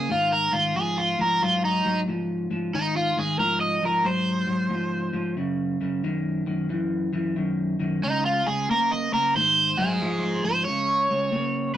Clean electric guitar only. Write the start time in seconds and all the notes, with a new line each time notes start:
0.09 G#2 D#3
0.52 G#2 D#3
0.76 G#2 F3
1.19 G#2 F3
1.42 G#2 F#3
1.85 G#2 F#3
2.08 G#2 F3
2.51 G#2 F3
2.73 G#2 D#3
3.17 G#2 D#3
3.39 G#2 F3
3.81 G#2 F3
4.04 G#2 F#3
4.47 G#2 F#3
4.70 G#2 F3
5.13 G#2 F3
5.37 F#2 C#3
5.81 F#2 C#3
6.04 F#2 D#3
6.46 F#2 D#3
6.69 F#2 E3
7.13 F#2 E3
7.36 F#2 D#3
7.80 F#2 D#3
8.02 C#3 G#3
8.47 C#3 G#3
8.69 C#3 A#3
9.12 C#3 A#3
9.36 G#2 D#3
9.77 G#2 F#3
10.01 G#2 F3
10.44 G#2 F3
10.67 C#3 G#3
11.10 C#3 G#3
11.31 C#3 A#3